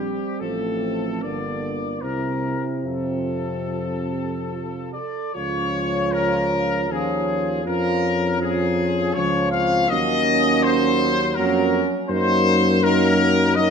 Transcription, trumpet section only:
0.00 0.40 G4 medium
0.40 1.23 A4 medium
1.22 2.02 D5 medium
2.01 2.67 A#4 medium
2.84 4.91 A4 medium
4.93 5.32 D5 medium
5.34 6.13 C#5 medium
6.12 6.90 A#4 loud
6.91 7.66 G#4 medium
7.66 8.40 A#4 loud
8.42 9.14 G#4 loud
9.14 9.52 C#5 loud
9.52 9.88 F5 loud
9.89 10.63 D#5 loud
10.63 11.36 C5 loud
11.35 11.92 A#4 loud
12.09 12.81 C5 loud
12.84 13.56 A#4 loud
13.56 13.70 D#5 loud

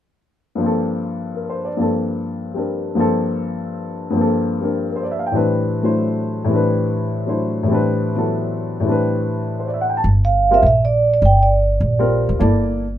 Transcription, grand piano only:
0.55 1.75 G2 soft
0.55 1.76 F3 soft
0.61 1.77 A#3 soft
0.61 1.79 C4 soft
0.66 1.80 A4 soft
1.35 1.55 A#4 soft
1.50 1.71 C5 soft
1.65 1.85 D5 soft
1.77 2.93 G2 soft
1.77 2.95 F3 soft
1.77 2.96 A#3 soft
1.77 2.54 C4 soft
1.81 2.98 A4 soft
2.54 2.96 G3 soft
2.54 2.96 C4 soft
2.54 2.97 D4 soft
2.54 2.98 A#4 soft
2.95 4.09 G2 soft
2.95 4.11 F3 soft
2.95 4.14 A#3 soft
2.95 4.15 C4 soft
3.00 4.16 A4 medium
4.10 5.30 G2 soft
4.10 5.31 F3 soft
4.16 5.33 A#3 soft
4.16 4.60 C4 soft
4.21 5.36 A4 medium
4.61 5.32 G3 soft
4.61 5.32 C4 soft
4.61 5.33 D4 soft
4.61 4.88 A#4 soft
4.89 4.98 A#4 soft
4.96 5.06 C5 soft
5.03 5.16 D5 soft
5.11 5.23 E5 soft
5.19 5.28 F5 soft
5.27 5.36 G5 soft
5.32 6.43 A2 soft
5.32 6.46 E3 soft
5.32 6.48 G3 soft
5.32 6.50 C4 soft
5.32 5.82 D4 soft
5.37 6.52 B4 medium
5.82 6.51 F#3 soft
5.82 6.51 A3 soft
5.82 6.51 D4 soft
5.82 6.51 E4 soft
5.82 6.52 C5 soft
6.45 7.62 A2 medium
6.45 7.64 E3 soft
6.49 7.66 G3 soft
6.49 7.69 C4 soft
6.54 7.26 D4 soft
6.54 7.71 B4 medium
7.26 7.68 F#3 soft
7.26 7.68 A3 soft
7.26 7.68 D4 soft
7.26 7.69 E4 soft
7.26 7.69 C5 soft
7.63 8.79 A2 medium
7.63 8.14 E3 soft
7.68 8.83 G3 medium
7.68 8.85 C4 soft
7.72 8.88 D4 soft
7.72 8.89 B4 medium
8.15 8.81 E3 soft
8.15 8.86 F#3 soft
8.15 8.86 B3 soft
8.15 8.87 A4 soft
8.80 10.01 A2 soft
8.80 10.02 E3 soft
8.85 10.03 G3 soft
8.85 10.04 C4 soft
8.89 10.06 D4 soft
8.89 10.07 B4 medium
9.60 9.69 C5 soft
9.68 9.78 D5 soft
9.74 9.87 E5 soft
9.81 9.93 F#5 soft
9.90 9.99 G5 soft
9.97 10.07 A5 soft
10.51 10.62 G3 medium
10.51 10.62 C4 soft
10.51 10.62 F4 soft
10.51 10.62 A#4 medium
11.99 12.38 G3 medium
11.99 12.38 C4 soft
11.99 12.38 F4 soft
11.99 12.38 A#4 medium
12.39 12.83 A#3 soft
12.39 12.84 E4 soft
12.39 12.84 A4 soft
12.39 12.84 D5 medium

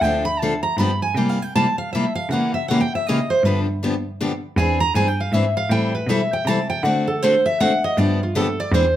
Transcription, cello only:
0.01 0.62 D2 medium
0.77 1.08 G2 medium
1.14 2.06 C3 medium
2.29 3.20 C#3 medium
3.43 4.34 G2 medium
4.56 4.87 E2 medium
4.94 5.27 G2 medium
5.32 5.64 G#2 medium
5.69 6.00 A2 medium
6.07 6.39 B2 medium
6.45 6.78 C3 medium
6.83 7.74 D3 medium
7.97 8.57 G2 medium
8.72 8.96 E2 loud

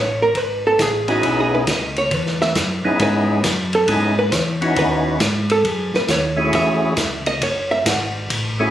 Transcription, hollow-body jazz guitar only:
0.00 0.21 C#5 medium
0.22 0.37 A#4 medium
0.37 0.64 B4 medium
0.67 0.80 A4 medium
0.82 1.09 G#4 medium
1.09 1.25 F#4 medium
1.25 1.39 E4 medium
1.40 1.53 G#4 medium
1.55 1.68 B4 medium
1.69 1.97 D#5 medium
1.98 2.14 C#5 medium
2.14 2.41 B4 medium
2.42 2.50 E5 medium
3.03 3.71 B4 medium
3.75 3.90 A4 medium
3.90 4.18 G#4 medium
4.19 4.34 B4 medium
4.34 4.62 C#5 medium
4.79 5.47 B4 medium
5.52 5.67 A4 medium
5.67 5.95 G#4 medium
5.96 6.09 B4 medium
6.11 6.38 C#5 medium
6.55 7.24 E5 medium
7.27 7.41 D#5 medium
7.43 7.71 C#5 medium
7.71 7.87 E5 medium
7.87 8.04 F#5 medium

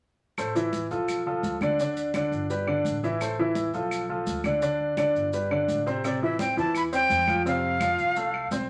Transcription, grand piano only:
0.38 0.52 A3 medium
0.38 0.53 A4 medium
0.38 0.53 C5 medium
0.55 0.84 E3 medium
0.55 0.85 E4 medium
0.55 0.85 E5 medium
0.91 1.20 F3 medium
0.91 1.20 F4 medium
0.91 1.20 A4 medium
1.26 1.55 F3 medium
1.26 1.55 F4 medium
1.26 1.56 A4 medium
1.62 1.76 D3 medium
1.62 1.76 D4 medium
1.62 1.77 D5 medium
1.80 2.09 D3 medium
1.80 2.09 D4 medium
1.80 2.09 D5 medium
2.15 2.44 D3 medium
2.15 2.44 D4 medium
2.15 2.44 D5 medium
2.50 2.65 G3 medium
2.50 2.65 G4 medium
2.50 2.65 B4 medium
2.67 2.96 D3 medium
2.67 2.97 D4 medium
2.67 2.97 D5 medium
3.04 3.18 E3 medium
3.04 3.18 E4 medium
3.04 3.18 E5 medium
3.21 3.36 A3 medium
3.21 3.36 A4 medium
3.21 3.36 C5 medium
3.39 3.68 E3 medium
3.39 3.68 E4 medium
3.39 3.68 E5 medium
3.74 4.03 F3 medium
3.74 4.03 F4 medium
3.74 4.03 A4 medium
4.09 4.38 F3 medium
4.09 4.39 F4 medium
4.09 4.39 A4 medium
4.45 4.59 D3 medium
4.45 4.59 D4 medium
4.45 4.60 D5 medium
4.62 4.91 D3 medium
4.62 4.91 D4 medium
4.62 4.92 D5 medium
4.98 5.27 D3 medium
4.98 5.27 D4 medium
4.98 5.27 D5 medium
5.33 5.48 G3 medium
5.33 5.48 G4 medium
5.33 5.48 B4 medium
5.51 5.80 D3 medium
5.51 5.80 D4 medium
5.51 5.80 D5 medium
5.86 6.01 C3 medium
5.86 6.01 C4 medium
5.86 6.01 C5 medium
6.05 6.19 C3 medium
6.05 6.19 C4 medium
6.23 6.37 E3 medium
6.23 6.37 E4 medium
6.40 6.54 C4 medium
6.40 6.54 C5 medium
6.57 6.86 E3 medium
6.57 6.86 E4 medium
6.93 7.22 C4 medium
6.93 7.22 C5 medium
7.28 7.43 F3 medium
7.28 7.43 F4 medium
7.45 7.74 C3 medium
7.45 7.75 C4 medium
7.81 8.10 F3 medium
7.81 8.10 F4 medium
8.17 8.46 A3 medium
8.17 8.46 A4 medium
8.52 8.66 C4 medium
8.52 8.66 C5 medium

